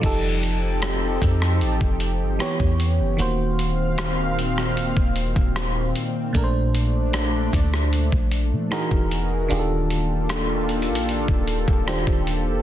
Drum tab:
CC |x-----------------------------------------------|------------------------------------------------|------------------------------------------------|------------------------------------------------|
HH |x-----x-----x-----x-----x-----x-----x-----x-----|x-----x-----x-----x-----x-----x-----x-----x-----|x-----x-----x-----x-----x-----x-----x-----x-----|x-----x-----x-----x-x-x-x-----x-----x-----x-----|
SD |------------r--------r--------------r-----------|------------r--------r--------------r-----------|------------r--------r--------------r-----------|------------r-----------------------r-----------|
BD |o-----------------o--------o-----------o--------|---------------------------o-----o--------------|o-----------------o--------o-----------o--------|---------------------------o-----o-----o--------|